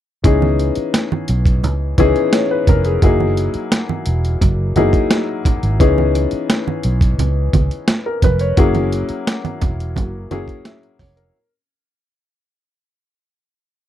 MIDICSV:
0, 0, Header, 1, 5, 480
1, 0, Start_track
1, 0, Tempo, 693642
1, 170, Time_signature, 4, 2, 24, 8
1, 9607, End_track
2, 0, Start_track
2, 0, Title_t, "Grand piano"
2, 0, Program_c, 0, 0
2, 163, Note_on_c, 0, 52, 59
2, 169, Note_on_c, 0, 59, 55
2, 171, Note_on_c, 0, 61, 59
2, 172, Note_on_c, 0, 63, 64
2, 175, Note_on_c, 0, 68, 71
2, 286, Control_c, 0, 64, 127
2, 753, Note_off_c, 0, 52, 0
2, 756, Note_off_c, 0, 59, 0
2, 757, Note_off_c, 0, 61, 0
2, 757, Note_off_c, 0, 63, 0
2, 759, Note_off_c, 0, 68, 0
2, 1371, Note_on_c, 0, 52, 84
2, 1374, Note_on_c, 0, 59, 68
2, 1378, Note_on_c, 0, 61, 66
2, 1383, Note_on_c, 0, 63, 68
2, 1384, Note_on_c, 0, 68, 91
2, 1618, Note_off_c, 0, 68, 0
2, 1620, Note_on_c, 0, 73, 55
2, 1730, Note_off_c, 0, 73, 0
2, 1738, Note_on_c, 0, 71, 62
2, 1811, Note_off_c, 0, 52, 0
2, 1812, Note_off_c, 0, 59, 0
2, 1815, Note_off_c, 0, 61, 0
2, 1817, Note_off_c, 0, 63, 0
2, 1850, Note_off_c, 0, 71, 0
2, 1862, Note_on_c, 0, 70, 64
2, 1972, Note_off_c, 0, 70, 0
2, 1977, Note_on_c, 0, 68, 54
2, 2093, Note_off_c, 0, 68, 0
2, 2093, Note_on_c, 0, 54, 71
2, 2096, Note_on_c, 0, 58, 61
2, 2098, Note_on_c, 0, 63, 60
2, 2101, Note_on_c, 0, 64, 65
2, 2102, Control_c, 0, 64, 0
2, 2103, Note_on_c, 0, 68, 78
2, 2239, Control_c, 0, 64, 127
2, 2678, Note_off_c, 0, 54, 0
2, 2680, Note_off_c, 0, 58, 0
2, 2681, Note_off_c, 0, 63, 0
2, 2682, Note_off_c, 0, 64, 0
2, 2683, Note_off_c, 0, 68, 0
2, 3295, Note_on_c, 0, 54, 74
2, 3300, Note_on_c, 0, 58, 66
2, 3300, Note_on_c, 0, 63, 72
2, 3302, Note_on_c, 0, 64, 69
2, 3304, Note_on_c, 0, 68, 84
2, 3732, Note_off_c, 0, 54, 0
2, 3735, Note_off_c, 0, 58, 0
2, 3735, Note_off_c, 0, 63, 0
2, 3736, Note_off_c, 0, 64, 0
2, 3737, Note_off_c, 0, 68, 0
2, 4010, Note_on_c, 0, 52, 70
2, 4014, Note_on_c, 0, 59, 63
2, 4015, Note_on_c, 0, 61, 69
2, 4017, Note_on_c, 0, 68, 80
2, 4018, Note_on_c, 0, 63, 68
2, 4022, Control_c, 0, 64, 0
2, 4121, Control_c, 0, 64, 127
2, 4596, Note_off_c, 0, 52, 0
2, 4597, Note_off_c, 0, 59, 0
2, 4598, Note_off_c, 0, 61, 0
2, 4599, Note_off_c, 0, 68, 0
2, 4600, Note_off_c, 0, 63, 0
2, 5578, Note_on_c, 0, 70, 52
2, 5688, Note_off_c, 0, 70, 0
2, 5701, Note_on_c, 0, 71, 61
2, 5810, Note_off_c, 0, 71, 0
2, 5818, Note_on_c, 0, 73, 55
2, 5933, Note_on_c, 0, 54, 70
2, 5937, Note_on_c, 0, 58, 69
2, 5940, Control_c, 0, 64, 0
2, 5940, Note_on_c, 0, 61, 66
2, 5942, Note_on_c, 0, 64, 66
2, 5943, Note_on_c, 0, 68, 79
2, 6042, Note_off_c, 0, 73, 0
2, 6081, Control_c, 0, 64, 127
2, 6516, Note_off_c, 0, 54, 0
2, 6518, Note_off_c, 0, 58, 0
2, 6520, Note_off_c, 0, 61, 0
2, 6521, Note_off_c, 0, 64, 0
2, 6521, Note_off_c, 0, 68, 0
2, 7134, Note_on_c, 0, 54, 77
2, 7136, Note_on_c, 0, 58, 70
2, 7136, Note_on_c, 0, 61, 71
2, 7141, Note_on_c, 0, 64, 72
2, 7143, Note_on_c, 0, 68, 87
2, 7377, Note_on_c, 0, 76, 52
2, 7571, Note_off_c, 0, 54, 0
2, 7571, Note_off_c, 0, 58, 0
2, 7572, Note_off_c, 0, 61, 0
2, 7574, Note_off_c, 0, 64, 0
2, 7575, Note_off_c, 0, 68, 0
2, 7601, Note_off_c, 0, 76, 0
2, 7609, Note_on_c, 0, 73, 57
2, 7723, Note_off_c, 0, 73, 0
2, 7728, Note_on_c, 0, 70, 55
2, 7857, Control_c, 0, 64, 0
2, 7957, Note_off_c, 0, 70, 0
2, 9607, End_track
3, 0, Start_track
3, 0, Title_t, "Fingered electric bass"
3, 0, Program_c, 1, 33
3, 170, Note_on_c, 1, 37, 86
3, 481, Note_off_c, 1, 37, 0
3, 894, Note_on_c, 1, 35, 86
3, 1132, Note_off_c, 1, 35, 0
3, 1132, Note_on_c, 1, 37, 81
3, 1339, Note_off_c, 1, 37, 0
3, 1371, Note_on_c, 1, 37, 84
3, 1475, Note_off_c, 1, 37, 0
3, 1851, Note_on_c, 1, 29, 83
3, 2059, Note_off_c, 1, 29, 0
3, 2093, Note_on_c, 1, 30, 90
3, 2404, Note_off_c, 1, 30, 0
3, 2814, Note_on_c, 1, 28, 78
3, 3021, Note_off_c, 1, 28, 0
3, 3057, Note_on_c, 1, 30, 86
3, 3262, Note_off_c, 1, 30, 0
3, 3293, Note_on_c, 1, 30, 83
3, 3396, Note_off_c, 1, 30, 0
3, 3897, Note_on_c, 1, 32, 79
3, 3999, Note_off_c, 1, 32, 0
3, 4014, Note_on_c, 1, 37, 93
3, 4323, Note_off_c, 1, 37, 0
3, 4738, Note_on_c, 1, 35, 83
3, 4942, Note_off_c, 1, 35, 0
3, 4971, Note_on_c, 1, 37, 92
3, 5178, Note_off_c, 1, 37, 0
3, 5217, Note_on_c, 1, 37, 86
3, 5318, Note_off_c, 1, 37, 0
3, 5692, Note_on_c, 1, 29, 83
3, 5898, Note_off_c, 1, 29, 0
3, 5936, Note_on_c, 1, 30, 88
3, 6243, Note_off_c, 1, 30, 0
3, 6658, Note_on_c, 1, 28, 81
3, 6901, Note_off_c, 1, 28, 0
3, 6901, Note_on_c, 1, 30, 87
3, 7103, Note_off_c, 1, 30, 0
3, 7134, Note_on_c, 1, 30, 82
3, 7236, Note_off_c, 1, 30, 0
3, 7613, Note_on_c, 1, 29, 80
3, 7819, Note_off_c, 1, 29, 0
3, 9607, End_track
4, 0, Start_track
4, 0, Title_t, "Muted fingered electric bass strokes"
4, 534, Note_on_c, 9, 29, 45
4, 603, Note_off_c, 9, 29, 0
4, 2456, Note_on_c, 9, 29, 44
4, 2525, Note_off_c, 9, 29, 0
4, 3773, Note_on_c, 9, 29, 43
4, 3842, Note_off_c, 9, 29, 0
4, 4378, Note_on_c, 9, 29, 49
4, 4447, Note_off_c, 9, 29, 0
4, 6295, Note_on_c, 9, 29, 42
4, 6365, Note_off_c, 9, 29, 0
4, 9607, End_track
5, 0, Start_track
5, 0, Title_t, "Drums"
5, 168, Note_on_c, 9, 36, 102
5, 169, Note_on_c, 9, 42, 76
5, 237, Note_off_c, 9, 36, 0
5, 238, Note_off_c, 9, 42, 0
5, 291, Note_on_c, 9, 63, 54
5, 360, Note_off_c, 9, 63, 0
5, 412, Note_on_c, 9, 42, 55
5, 481, Note_off_c, 9, 42, 0
5, 522, Note_on_c, 9, 42, 47
5, 591, Note_off_c, 9, 42, 0
5, 650, Note_on_c, 9, 38, 89
5, 653, Note_on_c, 9, 42, 90
5, 653, Note_on_c, 9, 62, 28
5, 719, Note_off_c, 9, 38, 0
5, 722, Note_off_c, 9, 42, 0
5, 722, Note_off_c, 9, 62, 0
5, 774, Note_on_c, 9, 63, 61
5, 844, Note_off_c, 9, 63, 0
5, 885, Note_on_c, 9, 42, 77
5, 895, Note_on_c, 9, 62, 25
5, 955, Note_off_c, 9, 42, 0
5, 964, Note_off_c, 9, 62, 0
5, 1007, Note_on_c, 9, 36, 73
5, 1014, Note_on_c, 9, 42, 42
5, 1076, Note_off_c, 9, 36, 0
5, 1083, Note_off_c, 9, 42, 0
5, 1132, Note_on_c, 9, 62, 28
5, 1132, Note_on_c, 9, 64, 59
5, 1135, Note_on_c, 9, 42, 73
5, 1201, Note_off_c, 9, 62, 0
5, 1201, Note_off_c, 9, 64, 0
5, 1205, Note_off_c, 9, 42, 0
5, 1370, Note_on_c, 9, 36, 80
5, 1371, Note_on_c, 9, 42, 60
5, 1383, Note_on_c, 9, 63, 61
5, 1439, Note_off_c, 9, 36, 0
5, 1440, Note_off_c, 9, 42, 0
5, 1452, Note_off_c, 9, 63, 0
5, 1493, Note_on_c, 9, 42, 31
5, 1562, Note_off_c, 9, 42, 0
5, 1610, Note_on_c, 9, 38, 119
5, 1611, Note_on_c, 9, 42, 85
5, 1679, Note_off_c, 9, 38, 0
5, 1680, Note_off_c, 9, 42, 0
5, 1850, Note_on_c, 9, 36, 75
5, 1851, Note_on_c, 9, 42, 69
5, 1859, Note_on_c, 9, 62, 27
5, 1859, Note_on_c, 9, 64, 65
5, 1919, Note_off_c, 9, 36, 0
5, 1921, Note_off_c, 9, 42, 0
5, 1928, Note_off_c, 9, 62, 0
5, 1928, Note_off_c, 9, 64, 0
5, 1969, Note_on_c, 9, 42, 45
5, 2038, Note_off_c, 9, 42, 0
5, 2091, Note_on_c, 9, 42, 67
5, 2092, Note_on_c, 9, 36, 100
5, 2096, Note_on_c, 9, 62, 27
5, 2161, Note_off_c, 9, 36, 0
5, 2161, Note_off_c, 9, 42, 0
5, 2165, Note_off_c, 9, 62, 0
5, 2217, Note_on_c, 9, 63, 54
5, 2286, Note_off_c, 9, 63, 0
5, 2334, Note_on_c, 9, 42, 63
5, 2404, Note_off_c, 9, 42, 0
5, 2449, Note_on_c, 9, 42, 41
5, 2518, Note_off_c, 9, 42, 0
5, 2573, Note_on_c, 9, 38, 96
5, 2576, Note_on_c, 9, 42, 94
5, 2580, Note_on_c, 9, 62, 25
5, 2642, Note_off_c, 9, 38, 0
5, 2645, Note_off_c, 9, 42, 0
5, 2649, Note_off_c, 9, 62, 0
5, 2695, Note_on_c, 9, 63, 59
5, 2764, Note_off_c, 9, 63, 0
5, 2807, Note_on_c, 9, 42, 82
5, 2876, Note_off_c, 9, 42, 0
5, 2939, Note_on_c, 9, 42, 42
5, 3008, Note_off_c, 9, 42, 0
5, 3055, Note_on_c, 9, 36, 85
5, 3058, Note_on_c, 9, 42, 80
5, 3058, Note_on_c, 9, 62, 28
5, 3058, Note_on_c, 9, 64, 52
5, 3125, Note_off_c, 9, 36, 0
5, 3127, Note_off_c, 9, 42, 0
5, 3127, Note_off_c, 9, 62, 0
5, 3127, Note_off_c, 9, 64, 0
5, 3293, Note_on_c, 9, 42, 59
5, 3304, Note_on_c, 9, 62, 28
5, 3304, Note_on_c, 9, 63, 66
5, 3362, Note_off_c, 9, 42, 0
5, 3373, Note_off_c, 9, 62, 0
5, 3373, Note_off_c, 9, 63, 0
5, 3412, Note_on_c, 9, 36, 57
5, 3417, Note_on_c, 9, 42, 34
5, 3481, Note_off_c, 9, 36, 0
5, 3487, Note_off_c, 9, 42, 0
5, 3533, Note_on_c, 9, 38, 115
5, 3534, Note_on_c, 9, 42, 84
5, 3602, Note_off_c, 9, 38, 0
5, 3603, Note_off_c, 9, 42, 0
5, 3773, Note_on_c, 9, 36, 71
5, 3777, Note_on_c, 9, 42, 67
5, 3777, Note_on_c, 9, 62, 27
5, 3777, Note_on_c, 9, 64, 61
5, 3842, Note_off_c, 9, 36, 0
5, 3846, Note_off_c, 9, 42, 0
5, 3846, Note_off_c, 9, 62, 0
5, 3846, Note_off_c, 9, 64, 0
5, 3896, Note_on_c, 9, 42, 46
5, 3965, Note_off_c, 9, 42, 0
5, 4014, Note_on_c, 9, 36, 102
5, 4014, Note_on_c, 9, 62, 28
5, 4017, Note_on_c, 9, 42, 69
5, 4083, Note_off_c, 9, 36, 0
5, 4083, Note_off_c, 9, 62, 0
5, 4086, Note_off_c, 9, 42, 0
5, 4138, Note_on_c, 9, 63, 58
5, 4207, Note_off_c, 9, 63, 0
5, 4257, Note_on_c, 9, 42, 69
5, 4257, Note_on_c, 9, 62, 27
5, 4326, Note_off_c, 9, 62, 0
5, 4327, Note_off_c, 9, 42, 0
5, 4367, Note_on_c, 9, 42, 48
5, 4436, Note_off_c, 9, 42, 0
5, 4495, Note_on_c, 9, 38, 96
5, 4499, Note_on_c, 9, 42, 84
5, 4503, Note_on_c, 9, 62, 27
5, 4564, Note_off_c, 9, 38, 0
5, 4568, Note_off_c, 9, 42, 0
5, 4572, Note_off_c, 9, 62, 0
5, 4619, Note_on_c, 9, 63, 55
5, 4688, Note_off_c, 9, 63, 0
5, 4729, Note_on_c, 9, 42, 81
5, 4799, Note_off_c, 9, 42, 0
5, 4851, Note_on_c, 9, 36, 79
5, 4859, Note_on_c, 9, 42, 45
5, 4920, Note_off_c, 9, 36, 0
5, 4928, Note_off_c, 9, 42, 0
5, 4976, Note_on_c, 9, 64, 62
5, 4977, Note_on_c, 9, 42, 87
5, 5045, Note_off_c, 9, 64, 0
5, 5046, Note_off_c, 9, 42, 0
5, 5214, Note_on_c, 9, 36, 93
5, 5215, Note_on_c, 9, 42, 63
5, 5218, Note_on_c, 9, 62, 30
5, 5218, Note_on_c, 9, 63, 60
5, 5283, Note_off_c, 9, 36, 0
5, 5284, Note_off_c, 9, 42, 0
5, 5288, Note_off_c, 9, 62, 0
5, 5288, Note_off_c, 9, 63, 0
5, 5336, Note_on_c, 9, 42, 37
5, 5406, Note_off_c, 9, 42, 0
5, 5450, Note_on_c, 9, 38, 115
5, 5451, Note_on_c, 9, 42, 86
5, 5460, Note_on_c, 9, 62, 34
5, 5520, Note_off_c, 9, 38, 0
5, 5520, Note_off_c, 9, 42, 0
5, 5529, Note_off_c, 9, 62, 0
5, 5690, Note_on_c, 9, 36, 72
5, 5691, Note_on_c, 9, 42, 69
5, 5702, Note_on_c, 9, 62, 28
5, 5702, Note_on_c, 9, 64, 61
5, 5760, Note_off_c, 9, 36, 0
5, 5760, Note_off_c, 9, 42, 0
5, 5771, Note_off_c, 9, 62, 0
5, 5771, Note_off_c, 9, 64, 0
5, 5809, Note_on_c, 9, 42, 49
5, 5878, Note_off_c, 9, 42, 0
5, 5932, Note_on_c, 9, 42, 71
5, 5933, Note_on_c, 9, 36, 114
5, 6001, Note_off_c, 9, 42, 0
5, 6002, Note_off_c, 9, 36, 0
5, 6052, Note_on_c, 9, 42, 29
5, 6053, Note_on_c, 9, 63, 59
5, 6121, Note_off_c, 9, 42, 0
5, 6122, Note_off_c, 9, 63, 0
5, 6176, Note_on_c, 9, 42, 71
5, 6179, Note_on_c, 9, 62, 27
5, 6245, Note_off_c, 9, 42, 0
5, 6249, Note_off_c, 9, 62, 0
5, 6288, Note_on_c, 9, 42, 48
5, 6357, Note_off_c, 9, 42, 0
5, 6417, Note_on_c, 9, 38, 101
5, 6421, Note_on_c, 9, 42, 83
5, 6486, Note_off_c, 9, 38, 0
5, 6490, Note_off_c, 9, 42, 0
5, 6536, Note_on_c, 9, 63, 63
5, 6538, Note_on_c, 9, 42, 31
5, 6605, Note_off_c, 9, 63, 0
5, 6607, Note_off_c, 9, 42, 0
5, 6653, Note_on_c, 9, 64, 69
5, 6654, Note_on_c, 9, 42, 70
5, 6657, Note_on_c, 9, 36, 77
5, 6722, Note_off_c, 9, 64, 0
5, 6723, Note_off_c, 9, 42, 0
5, 6726, Note_off_c, 9, 36, 0
5, 6784, Note_on_c, 9, 42, 42
5, 6853, Note_off_c, 9, 42, 0
5, 6892, Note_on_c, 9, 62, 25
5, 6892, Note_on_c, 9, 63, 35
5, 6892, Note_on_c, 9, 64, 63
5, 6897, Note_on_c, 9, 36, 91
5, 6903, Note_on_c, 9, 42, 76
5, 6962, Note_off_c, 9, 62, 0
5, 6962, Note_off_c, 9, 63, 0
5, 6962, Note_off_c, 9, 64, 0
5, 6966, Note_off_c, 9, 36, 0
5, 6972, Note_off_c, 9, 42, 0
5, 7135, Note_on_c, 9, 42, 57
5, 7136, Note_on_c, 9, 62, 31
5, 7136, Note_on_c, 9, 63, 61
5, 7204, Note_off_c, 9, 42, 0
5, 7206, Note_off_c, 9, 62, 0
5, 7206, Note_off_c, 9, 63, 0
5, 7250, Note_on_c, 9, 36, 65
5, 7259, Note_on_c, 9, 42, 33
5, 7319, Note_off_c, 9, 36, 0
5, 7328, Note_off_c, 9, 42, 0
5, 7371, Note_on_c, 9, 38, 109
5, 7372, Note_on_c, 9, 42, 97
5, 7377, Note_on_c, 9, 62, 31
5, 7440, Note_off_c, 9, 38, 0
5, 7441, Note_off_c, 9, 42, 0
5, 7446, Note_off_c, 9, 62, 0
5, 7496, Note_on_c, 9, 42, 30
5, 7565, Note_off_c, 9, 42, 0
5, 7608, Note_on_c, 9, 36, 76
5, 7611, Note_on_c, 9, 46, 49
5, 7621, Note_on_c, 9, 62, 30
5, 7621, Note_on_c, 9, 64, 61
5, 7677, Note_off_c, 9, 36, 0
5, 7680, Note_off_c, 9, 46, 0
5, 7690, Note_off_c, 9, 62, 0
5, 7690, Note_off_c, 9, 64, 0
5, 7731, Note_on_c, 9, 42, 50
5, 7800, Note_off_c, 9, 42, 0
5, 9607, End_track
0, 0, End_of_file